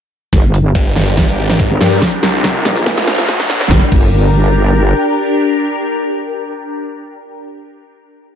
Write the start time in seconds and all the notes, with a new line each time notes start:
0.33 G1 D4 G4 A#4, kick, snare, closed hi-hat, riser
0.54 closed hi-hat
0.75 G1, kick, closed hi-hat
0.96 snare, closed hi-hat
1.07 shaker
1.17 G1, kick, snare, closed hi-hat
1.29 shaker
1.39 G#1
1.50 snare, closed hi-hat, shaker
1.60 kick, closed hi-hat
1.71 G1
1.81 G2, snare, closed hi-hat
2.02 F4, kick, snare, closed hi-hat
2.23 C2, snare, closed hi-hat
2.44 kick, snare, closed hi-hat
2.65 A#1, snare, closed hi-hat
2.76 shaker
2.86 kick, snare, closed hi-hat
2.98 A#1, snare
3.07 snare
3.19 snare, closed hi-hat, shaker
3.29 kick, snare, closed hi-hat
3.40 snare, shaker
3.50 snare, closed hi-hat
3.61 snare
3.71 G1 D4 G4 A#4, kick, snare
3.92 G1, kick, crash